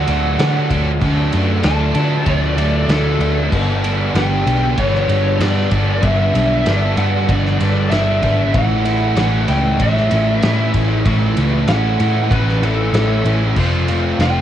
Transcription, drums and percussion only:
0.07 ride medium
0.39 snare loud
0.39 ride loud
0.70 kick medium
0.70 ride medium
1.01 kick loud
1.01 ride loud
1.33 ride medium
1.63 snare loud
1.63 ride loud
1.95 ride medium
2.26 kick loud
2.26 ride loud
2.58 ride medium
2.89 snare loud
2.89 ride loud
3.21 ride medium
3.52 kick loud
3.52 crash loud
3.84 ride medium
4.15 snare loud
4.15 ride loud
4.47 ride medium
4.78 kick loud
4.78 ride loud
4.95 snare soft
5.09 ride medium
5.41 snare loud
5.41 ride loud
5.71 kick medium
5.71 ride medium
6.03 kick loud
6.03 ride loud
6.35 ride medium
6.66 snare loud
6.66 ride loud
6.97 ride medium
7.29 kick loud
7.29 ride loud
7.46 snare soft
7.61 ride medium
7.92 snare loud
7.92 ride loud
8.23 kick medium
8.23 ride medium
8.54 kick loud
8.54 ride loud
8.86 ride medium
9.17 snare loud
9.17 ride loud
9.48 ride medium
9.80 kick loud
9.80 ride loud
9.97 snare soft
10.11 ride medium
10.42 snare loud
10.42 ride loud
10.74 kick medium
10.74 ride medium
11.05 kick loud
11.05 ride loud
11.37 ride medium
11.68 snare loud
11.68 ride loud
12.00 ride medium
12.31 kick loud
12.31 ride loud
12.49 snare soft
12.63 ride medium
12.94 snare loud
12.94 ride loud
13.25 ride medium
13.56 kick loud
13.56 crash loud
13.88 ride medium
14.20 snare loud
14.20 ride medium

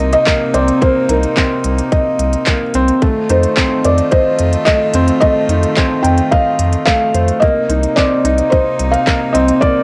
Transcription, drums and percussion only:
0.13 closed hi-hat soft
0.27 kick loud
0.27 clap loud
0.27 closed hi-hat soft
0.54 closed hi-hat medium
0.68 closed hi-hat soft
0.82 kick loud
0.82 closed hi-hat soft
1.09 closed hi-hat medium
1.23 closed hi-hat soft
1.37 kick loud
1.37 clap loud
1.37 closed hi-hat soft
1.64 closed hi-hat medium
1.78 closed hi-hat soft
1.92 kick loud
1.92 closed hi-hat soft
2.19 closed hi-hat medium
2.33 closed hi-hat soft
2.46 kick loud
2.46 clap loud
2.46 closed hi-hat soft
2.74 closed hi-hat medium
2.88 closed hi-hat soft
3.02 kick loud
3.02 closed hi-hat soft
3.29 closed hi-hat medium
3.43 closed hi-hat soft
3.57 kick loud
3.57 clap loud
3.57 closed hi-hat soft
3.85 closed hi-hat medium
3.98 closed hi-hat soft
4.12 kick loud
4.12 closed hi-hat soft
4.39 closed hi-hat medium
4.53 closed hi-hat soft
4.67 kick loud
4.67 clap loud
4.67 closed hi-hat soft
4.94 closed hi-hat medium
5.08 closed hi-hat soft
5.22 kick loud
5.22 closed hi-hat soft
5.49 closed hi-hat medium
5.63 closed hi-hat soft
5.77 kick loud
5.77 clap medium
5.77 closed hi-hat soft
6.05 closed hi-hat medium
6.18 closed hi-hat soft
6.32 kick loud
6.32 closed hi-hat soft
6.59 closed hi-hat medium
6.73 closed hi-hat soft
6.87 kick loud
6.87 clap loud
6.87 closed hi-hat soft
7.14 closed hi-hat medium
7.28 closed hi-hat soft
7.42 kick loud
7.42 closed hi-hat soft
7.70 closed hi-hat medium
7.83 closed hi-hat soft
7.97 kick loud
7.97 clap medium
7.97 closed hi-hat soft
8.25 closed hi-hat medium
8.38 closed hi-hat soft
8.52 kick loud
8.52 closed hi-hat soft
8.79 closed hi-hat medium
8.94 closed hi-hat soft
9.07 kick loud
9.07 clap medium
9.07 closed hi-hat soft
9.35 closed hi-hat medium
9.48 closed hi-hat soft
9.62 kick medium
9.62 closed hi-hat soft

